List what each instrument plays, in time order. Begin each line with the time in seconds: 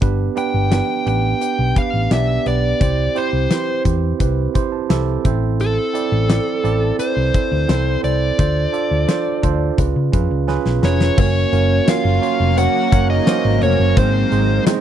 0.01 picked electric bass G1, tine electric piano B3 D4 G4 B4, kick, closed hi-hat
0.36 tine electric piano B3 D4 G4 B4, lead electric guitar G5, closed hi-hat
0.54 picked electric bass G1
0.70 tine electric piano B3 D4 G4 B4, lead electric guitar G5, snare, closed hi-hat
1.05 picked electric bass A1, tine electric piano B3 D4 G4 B4, lead electric guitar G5, closed hi-hat
1.40 tine electric piano B3 D4 G4 B4, closed hi-hat
1.59 picked electric bass B1
1.75 tine electric piano B3 D4 G4 B4, lead electric guitar F5, kick, closed hi-hat
1.94 picked electric bass A1
2.11 picked electric bass B1, tine electric piano B3 D4 G4 D5, lead electric guitar E5, snare, closed hi-hat
2.46 picked electric bass B1, tine electric piano B3 D4 G4 B4, lead electric guitar D5, closed hi-hat
2.80 picked electric bass C2, tine electric piano C4 E4 G4 C5, kick, closed hi-hat
3.15 tine electric piano C4 E4 G4 C5, lead electric guitar C5, closed hi-hat
3.33 picked electric bass C2
3.50 tine electric piano C4 E4 G4 B4, snare, closed hi-hat
3.84 picked electric bass E2, tine electric piano C4 E4 G4 C5, kick, closed hi-hat
4.19 picked electric bass C2, tine electric piano C4 E4 G4 B4, kick, closed hi-hat
4.54 tine electric piano C4 E4 G4 C5 C6, kick, closed hi-hat
4.72 tine electric piano A5
4.89 picked electric bass C2, tine electric piano C4 E4 G4 A4 G5, snare, closed hi-hat
5.24 picked electric bass A1, tine electric piano C4 E4 A4 C5 E5, kick, closed hi-hat
5.60 lead electric guitar A4, closed hi-hat
5.93 tine electric piano C4 E4 A4 D5, closed hi-hat
6.12 picked electric bass A1
6.29 tine electric piano C4 E4 A4 D5, snare, closed hi-hat
6.64 picked electric bass A1, tine electric piano C4 E4 A4 D5, closed hi-hat
6.99 tine electric piano C4 E4 A4 B4, lead electric guitar C5, closed hi-hat
7.17 picked electric bass C2
7.34 tine electric piano C4 E4 A4 C5, kick, closed hi-hat
7.52 picked electric bass D2
7.68 picked electric bass C2, tine electric piano C4 E4 A4 C5, snare, closed hi-hat
8.03 picked electric bass C2, tine electric piano C4 E4 A4 C5, lead electric guitar D5, closed hi-hat
8.38 picked electric bass D2, tine electric piano D4 F4 A4 C5, kick, closed hi-hat
8.73 tine electric piano D4 F4 A4 D5, closed hi-hat
8.91 picked electric bass D2
9.08 tine electric piano D4 F4 A4 C5, snare, closed hi-hat
9.43 picked electric bass D2, tine electric piano D4 F4 A4 C5, kick, closed hi-hat
9.78 picked electric bass C#2, tine electric piano C#4 F4 G#4 B4, kick, closed hi-hat
9.96 picked electric bass C#3
10.12 picked electric bass F2, tine electric piano C#4 F4 G#4 B4 F5, kick, closed hi-hat
10.31 picked electric bass C#2
10.48 tine electric piano C#4 F4 G#4 B4 G#5, snare
10.66 picked electric bass B1, snare
10.82 picked electric bass F1, tine electric piano C#4 F4 G#4 B4 A#5, violin section C#4, lead electric guitar C#5, snare
11.00 snare
11.17 picked electric bass F#1, ambient pad C#3 F#3 A#3 A#4, tine electric piano A#3 C#4 F#4 A#4 C#5, violin section C#4, lead electric guitar C#5, kick, crash, cowbell
11.52 picked electric bass F#1, tine electric piano A#3 C#4 F#4 A#4 C#5, closed hi-hat
11.87 tine electric piano A#3 C#4 F#4 A#4 C#5, violin section F4, lead electric guitar F5, snare, closed hi-hat, tambourine, cowbell
12.05 picked electric bass F#1
12.22 tine electric piano A#3 C#4 F#4 A#4 C#5, closed hi-hat
12.40 picked electric bass F1
12.57 tine electric piano A#3 C#4 F#4 A#4 C#5, violin section F#4, lead electric guitar F#5, closed hi-hat, cowbell
12.91 picked electric bass F#1, tine electric piano A#3 C#4 F#4 A#4 C#5, kick, closed hi-hat
13.10 violin section D#4, lead electric guitar D#5
13.26 tine electric piano A#3 C#4 F#4 A#4 C5, snare, closed hi-hat, tambourine, cowbell
13.45 picked electric bass G#1
13.61 picked electric bass F1, tine electric piano A#3 C#4 F#4 A#4 C#5, violin section C#4, lead electric guitar C#5, closed hi-hat
13.80 picked electric bass F#1
13.96 picked electric bass G#1, ambient pad C3 D#3 G#3 D#4, tine electric piano G#3 C4 D#4 G#4 C5, violin section C4, lead electric guitar C5, kick, closed hi-hat, cowbell
14.31 picked electric bass G#1, tine electric piano G#3 C4 D#4 G#4 C5, closed hi-hat
14.66 tine electric piano G#3 C4 D#4 G#4 C5, snare, closed hi-hat, tambourine, cowbell